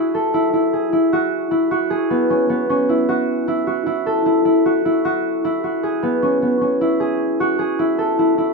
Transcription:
0.00 0.33 E4 medium
0.00 1.12 F#4 medium
0.00 0.20 G#4 medium
0.14 0.79 A4 medium
0.34 0.53 E4 medium
0.53 0.92 E4 medium
0.73 1.90 G#4 medium
0.93 1.51 E4 medium
1.13 1.71 F#4 medium
1.51 2.89 E4 medium
1.71 3.08 F#4 medium
1.90 4.12 G#4 medium
2.10 2.49 B3 medium
2.30 2.69 C#4 medium
2.49 5.60 B3 medium
2.69 5.59 C#4 medium
2.89 3.47 E4 medium
3.09 3.66 F#4 medium
3.48 3.86 E4 medium
3.67 4.65 F#4 medium
3.86 4.25 E4 medium
4.06 5.89 A4 medium
4.26 4.45 E4 medium
4.45 4.85 E4 medium
4.65 5.04 F#4 medium
4.85 5.44 E4 medium
5.05 5.63 F#4 medium
5.44 6.81 E4 medium
5.64 7.40 F#4 medium
5.83 7.00 G#4 medium
6.03 6.42 B3 medium
6.22 6.61 C#4 medium
6.42 8.54 B3 medium
6.61 8.54 C#4 medium
6.81 7.79 E4 medium
7.00 7.58 G#4 medium
7.40 8.54 F#4 medium
7.59 8.04 G#4 medium
7.79 8.18 E4 medium
7.98 8.54 A4 medium
8.19 8.37 E4 medium
8.38 8.54 E4 medium

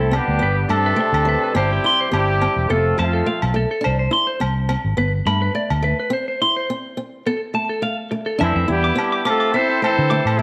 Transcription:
0.00 0.18 C2 medium
0.00 0.11 C4 medium
0.11 0.66 G3 medium
0.11 0.37 C4 medium
0.11 0.67 D4 medium
0.11 0.66 G4 medium
0.11 low agogo medium
0.16 0.68 B3 medium
0.28 0.39 D2 medium
0.39 0.64 G1 medium
0.39 0.65 B3 medium
0.39 0.56 B4 medium
0.68 0.92 G2 medium
0.68 1.51 A3 medium
0.68 0.95 A3 medium
0.68 1.56 D4 medium
0.68 1.51 A4 medium
0.68 low agogo medium
0.72 1.53 C3 medium
0.72 1.53 C4 medium
0.86 0.98 B4 medium
0.96 1.23 A3 medium
1.00 muted clean electric guitar stroke medium
1.13 1.35 D2 medium
1.13 low agogo medium
1.25 1.51 G3 medium
1.25 1.42 B4 medium
1.44 1.55 B4 medium
1.53 1.78 G1 medium
1.53 2.09 G3 medium
1.53 1.80 C4 medium
1.53 2.12 E4 medium
1.53 2.09 G4 medium
1.53 low agogo medium
1.57 2.13 C3 medium
1.57 2.13 C4 medium
1.57 1.70 C5 medium
1.73 1.84 G4 medium
1.84 2.10 E4 medium
1.84 1.99 C6 medium
2.01 2.12 C5 medium
2.11 2.46 G1 medium
2.11 2.65 G3 medium
2.11 2.37 C4 medium
2.11 2.67 C4 medium
2.11 2.70 E4 medium
2.11 2.65 G4 medium
2.11 low agogo medium
2.41 2.67 C4 medium
2.41 low agogo medium
2.56 2.67 E1 medium
2.68 2.92 F1 medium
2.68 2.98 A3 medium
2.68 2.95 B3 medium
2.68 3.00 C4 medium
2.68 3.01 F4 medium
2.68 2.98 A4 medium
2.68 2.84 A4 medium
2.98 3.21 F2 medium
2.98 3.56 F3 medium
2.98 3.23 A3 medium
2.98 3.57 A3 medium
2.98 3.56 C4 medium
2.98 3.56 F4 medium
2.98 3.13 A5 medium
2.98 low agogo medium
3.13 3.26 A4 medium
3.26 3.52 A3 medium
3.26 3.41 F5 medium
3.42 3.64 B1 medium
3.42 low agogo medium
3.54 3.80 A3 medium
3.54 3.69 A4 medium
3.71 3.83 A4 medium
3.81 4.07 D4 medium
3.81 3.98 C5 medium
3.81 low agogo medium
3.86 4.07 C2 medium
3.99 4.11 C5 medium
4.11 4.37 E4 medium
4.11 4.26 C6 medium
4.27 4.40 C5 medium
4.40 4.75 C2 medium
4.40 4.66 C4 medium
4.40 low agogo medium
4.69 4.94 C4 medium
4.69 low agogo medium
4.84 4.95 G#1 medium
4.97 5.20 G1 medium
4.97 5.23 B3 medium
4.97 5.12 B4 medium
5.26 5.48 G2 medium
5.26 5.52 A3 medium
5.26 5.40 B5 medium
5.26 low agogo medium
5.42 5.54 B4 medium
5.55 5.80 A3 medium
5.55 5.69 D5 medium
5.70 5.92 D2 medium
5.70 low agogo medium
5.82 6.08 A3 medium
5.82 5.97 B4 medium
6.00 6.11 B4 medium
6.10 6.36 C4 medium
6.10 6.26 C5 medium
6.28 6.40 C5 medium
6.41 6.66 E4 medium
6.41 6.55 C6 medium
6.56 6.68 C5 medium
6.70 6.95 C4 medium
6.97 7.22 C4 medium
7.26 7.51 B3 medium
7.26 7.40 A4 medium
7.54 7.79 A3 medium
7.54 7.68 A5 medium
7.69 7.82 A4 medium
7.82 8.08 A3 medium
7.82 7.96 F5 medium
8.11 8.36 A3 medium
8.11 muted clean electric guitar stroke medium
8.26 8.38 A4 medium
8.38 8.52 F2 medium
8.38 8.67 E3 medium
8.38 8.67 A3 medium
8.38 8.64 D4 medium
8.38 8.67 E4 medium
8.38 8.53 E5 medium
8.38 low agogo medium
8.43 8.68 C4 medium
8.55 8.66 F2 medium
8.55 8.68 E5 medium
8.68 8.90 E2 medium
8.68 9.22 G3 medium
8.68 9.22 B3 medium
8.68 8.93 E4 medium
8.68 9.27 E4 medium
8.68 9.22 G4 medium
8.84 8.96 D6 medium
8.95 9.21 C4 medium
8.95 low agogo medium
9.12 9.24 D6 medium
9.25 9.54 A3 medium
9.25 9.50 C4 medium
9.25 9.54 C4 medium
9.25 9.54 F4 medium
9.25 9.54 A4 medium
9.25 9.39 D6 medium
9.25 low agogo medium
9.40 9.52 D6 medium
9.53 9.79 B3 medium
9.53 9.80 C4 loud
9.53 9.83 E4 medium
9.53 9.82 A4 medium
9.53 9.80 C5 loud
9.53 9.67 E5 medium
9.69 9.81 E5 medium
9.81 10.36 E3 medium
9.81 10.07 A3 medium
9.81 10.34 C4 medium
9.81 10.36 E4 medium
9.81 10.40 A4 medium
9.81 10.34 C5 loud
9.81 low agogo medium
9.98 10.20 D3 medium
10.10 10.35 A3 medium
10.10 10.23 D6 medium
10.25 10.42 A2 medium
10.25 low agogo medium
10.37 10.42 A3 medium
10.37 10.42 E4 medium
10.37 10.42 A4 medium

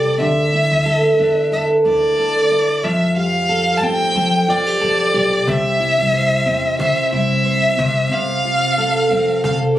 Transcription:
0.00 0.14 C2 medium
0.00 0.19 C3 medium
0.00 0.27 C4 medium
0.00 0.27 G4 medium
0.00 0.85 A4 medium
0.00 0.16 D5 medium
0.20 0.47 D2 medium
0.20 2.84 D3 medium
0.20 1.48 E5 medium
0.53 1.84 E4 soft
0.71 1.10 D2 medium
0.86 1.52 A4 medium
1.19 1.61 E2 medium
1.19 2.91 D4 soft
1.52 2.17 A4 medium
1.52 1.67 E5 medium
1.85 2.39 D2 medium
1.85 2.50 E4 medium
1.85 2.86 D5 medium
2.18 3.20 A4 medium
2.51 2.91 E4 soft
2.84 3.82 F2 medium
2.84 5.48 F3 medium
2.84 3.16 E5 medium
3.17 4.48 G4 soft
3.17 3.78 F5 medium
3.49 4.14 A4 medium
3.77 3.85 A5 medium
3.82 4.09 A2 medium
3.82 6.46 C4 soft
3.82 4.51 G5 loud
4.15 4.43 F3 medium
4.15 4.80 A4 medium
4.48 4.76 F2 medium
4.48 4.67 F4 soft
4.48 5.50 D5 medium
4.67 5.13 G4 soft
4.81 5.08 F2 medium
4.81 5.55 A4 medium
5.14 5.42 B1 medium
5.14 5.80 G4 soft
5.47 5.75 C2 medium
5.47 7.77 C3 medium
5.47 6.79 E5 loud
5.47 cajon bass medium
5.80 7.11 E4 soft
5.99 6.38 C2 medium
6.13 6.79 C5 medium
6.46 6.89 E2 medium
6.46 9.10 C4 medium
6.79 7.45 C5 medium
6.79 7.11 E5 medium
6.79 cajon bass medium
7.12 7.67 C2 medium
7.12 7.86 E4 medium
7.12 8.14 E5 loud
7.46 8.78 C5 medium
7.79 8.33 C2 medium
7.79 8.10 C3 medium
7.79 cajon bass medium
8.11 9.79 C3 medium
8.11 9.44 F5 loud
8.45 9.76 F4 soft
8.78 9.44 A4 medium
9.11 9.38 F2 medium
9.11 9.79 C4 medium
9.44 9.71 C3 medium
9.44 9.79 A4 medium
9.44 9.59 F5 medium
9.44 cajon bass medium

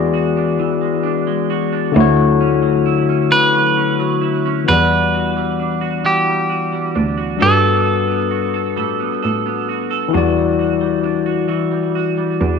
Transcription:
0.00 1.92 E2 loud
0.00 0.59 E3 medium
0.00 1.90 E3 medium
0.00 0.80 G#3 medium
0.00 1.91 B3 medium
0.00 0.37 D4 medium
0.00 1.92 F#4 medium
0.00 1.93 G#4 medium
0.00 1.94 D5 medium
0.14 1.50 F#4 medium
0.37 1.03 D4 medium
0.59 1.94 E3 medium
0.81 1.26 G#3 medium
1.03 1.72 D4 medium
1.27 2.04 G#3 medium
1.50 2.85 F#4 medium
1.73 2.40 D4 medium
1.92 4.62 D3 medium
1.92 3.32 D3 medium
1.92 4.63 A3 medium
1.96 4.64 D2 loud
1.96 4.64 E4 medium
1.96 4.65 F#4 medium
2.00 4.66 C#5 medium
2.16 2.62 F#3 medium
2.40 3.08 C#4 medium
2.63 3.54 F#3 medium
2.86 4.21 E4 medium
3.09 3.76 C#4 medium
3.32 4.67 D3 medium
3.32 4.67 B4 loud
3.54 3.99 F#3 medium
3.77 4.44 C#4 medium
3.99 4.91 F#3 medium
4.21 4.68 E4 medium
4.46 4.77 C#4 medium
4.64 7.35 E3 soft
4.64 6.03 E3 medium
4.64 7.36 B3 medium
4.64 5.14 F#4 medium
4.68 6.92 E2 loud
4.68 7.35 G3 medium
4.68 6.09 B4 medium
4.68 7.37 F#5 soft
4.73 7.39 D5 medium
4.91 5.36 G3 soft
5.14 5.81 F#4 medium
5.36 6.27 G3 medium
5.60 6.95 D4 soft
5.81 6.04 F#4 medium
6.04 7.49 E3 medium
6.04 6.49 F#4 medium
6.04 7.46 G4 medium
6.27 6.72 G3 soft
6.49 7.17 F#4 medium
6.73 7.39 G3 soft
6.95 7.37 D2 medium
6.95 7.62 D4 medium
7.17 8.30 F#4 medium
7.37 10.07 G3 medium
7.37 8.76 G3 medium
7.37 10.08 D4 soft
7.37 7.84 A4 medium
7.41 8.73 G2 loud
7.41 10.10 F#4 medium
7.41 9.19 A4 medium
7.41 10.11 A4 soft
7.41 10.12 B4 medium
7.62 8.07 B3 medium
7.85 8.53 A4 soft
8.07 8.99 B3 soft
8.31 9.69 F#4 soft
8.54 8.76 A4 medium
8.76 8.94 A2 soft
8.76 10.37 G3 medium
8.76 9.21 A4 medium
9.00 9.46 B3 medium
9.23 10.10 A2 medium
9.23 9.89 A4 medium
9.46 11.03 B3 medium
9.69 10.14 F#4 medium
9.91 10.22 A4 medium
10.08 12.59 E3 medium
10.08 12.59 E4 medium
10.13 12.37 E2 medium
10.13 11.48 E3 medium
10.13 12.59 G3 medium
10.13 12.59 F#4 medium
10.13 10.58 F#4 medium
10.17 12.59 D5 medium
10.37 10.81 G3 medium
10.59 11.25 F#4 medium
10.81 11.71 G3 medium
11.03 12.40 D4 medium
11.26 11.47 F#4 medium
11.48 12.59 E3 medium
11.48 11.94 F#4 medium
11.72 12.17 G3 medium
11.95 12.59 F#4 medium
12.18 12.59 G3 medium
12.41 12.59 E2 medium
12.41 12.59 D4 medium

